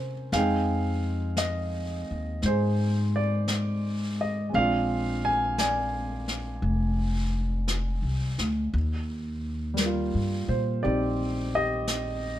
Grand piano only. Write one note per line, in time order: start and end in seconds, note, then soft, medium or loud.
0.00 0.32 A#3 soft
0.00 0.33 C#4 soft
0.00 0.33 E4 soft
0.00 0.33 G4 medium
0.00 0.13 A#4 soft
0.00 0.57 C5 soft
0.33 4.48 G#3 medium
0.33 4.52 C4 soft
0.33 4.55 D#4 soft
0.33 2.40 G#4 medium
0.33 1.41 F5 medium
0.38 4.56 G5 medium
1.38 2.46 D#5 medium
2.46 4.51 G#4 soft
2.46 3.18 C5 medium
3.16 4.24 D5 medium
4.21 4.54 D#5 medium
4.49 8.71 G#3 soft
4.49 8.73 C4 soft
4.55 8.75 D4 soft
4.55 5.58 D5 medium
4.55 5.22 F5 medium
4.60 8.77 F4 medium
5.25 5.56 G#5 medium
5.59 7.65 D5 medium
5.59 7.32 G#5 medium
9.74 12.39 G3 soft
9.78 12.39 A#3 soft
9.86 12.39 F4 soft
10.49 10.84 C5 medium
10.83 12.39 C4 soft
10.83 12.39 D#4 soft
10.83 11.55 G4 medium
10.83 11.51 D5 medium
11.55 12.39 G4 medium
11.55 12.39 D#5 medium